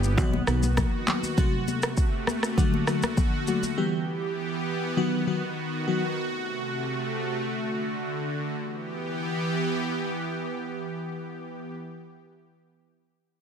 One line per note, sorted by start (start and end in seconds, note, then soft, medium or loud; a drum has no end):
0.00 0.18 G1 medium
0.00 0.17 E3 medium
0.00 1.35 B3 medium
0.00 0.16 G4 medium
0.00 shaker medium
0.17 0.41 B1 loud
0.17 0.45 D#3 medium
0.17 1.36 D#3 medium
0.17 0.45 F#3 medium
0.17 0.45 B3 medium
0.17 0.45 F#4 loud
0.17 2.55 F#4 medium
0.17 kick loud
0.17 low conga medium
0.17 shaker medium
0.34 high conga medium
0.47 0.84 B1 medium
0.47 0.62 D#3 medium
0.47 0.62 F#3 medium
0.47 0.63 B3 medium
0.47 0.63 F#4 medium
0.47 cross-stick loud
0.47 shaker medium
0.63 high conga medium
0.63 shaker medium
0.77 kick medium
0.77 cross-stick loud
0.77 high conga medium
0.77 low conga medium
0.77 shaker medium
1.07 1.22 D#3 medium
1.07 1.23 F#3 medium
1.07 1.23 B3 medium
1.07 1.23 F#4 medium
1.07 clap loud
1.07 high conga medium
1.07 shaker medium
1.23 high conga medium
1.23 shaker medium
1.37 1.93 C3 medium
1.37 2.56 C3 medium
1.37 1.93 F#3 medium
1.37 1.93 A3 medium
1.37 3.75 A3 medium
1.37 1.93 F#4 loud
1.37 kick loud
1.37 low conga medium
1.37 shaker medium
1.68 high conga medium
1.68 shaker medium
1.83 cross-stick loud
1.83 shaker medium
1.97 kick medium
1.97 shaker medium
2.27 cross-stick medium
2.27 high conga medium
2.27 shaker medium
2.43 cross-stick medium
2.43 shaker medium
2.57 2.85 D3 medium
2.57 3.76 D3 medium
2.57 2.85 F#3 medium
2.57 2.85 A3 medium
2.57 3.76 F#4 medium
2.57 2.85 F#4 loud
2.57 kick loud
2.57 low conga medium
2.57 shaker medium
2.74 high conga medium
2.87 3.02 D3 medium
2.87 3.03 F#3 medium
2.87 3.03 A3 medium
2.87 3.03 F#4 medium
2.87 cross-stick medium
2.87 shaker medium
3.03 cross-stick medium
3.03 high conga medium
3.03 shaker medium
3.17 kick medium
3.17 high conga medium
3.17 low conga medium
3.17 shaker medium
3.47 3.63 D3 medium
3.47 3.63 F#3 medium
3.47 3.63 A3 medium
3.47 3.63 F#4 medium
3.47 high conga medium
3.47 shaker medium
3.63 high conga medium
3.63 shaker medium
3.77 4.33 E3 medium
3.77 4.96 E3 medium
3.77 4.33 G3 medium
3.77 4.33 B3 medium
3.77 6.15 B3 medium
3.77 4.96 G4 medium
3.77 4.33 G4 loud
4.97 5.25 D#3 medium
4.97 6.16 D#3 medium
4.97 5.25 F#3 medium
4.97 5.25 B3 medium
4.97 5.25 F#4 loud
4.97 8.54 F#4 medium
5.27 5.42 D#3 medium
5.27 5.42 F#3 medium
5.27 5.43 B3 medium
5.27 5.43 F#4 medium
5.87 6.02 D#3 medium
5.87 6.03 F#3 medium
5.87 6.03 B3 medium
5.87 6.03 F#4 medium
6.18 7.36 C3 medium
6.18 8.55 A3 medium
7.38 8.56 D3 medium
8.57 11.73 E3 medium
8.57 11.73 B3 medium
8.57 11.73 G4 medium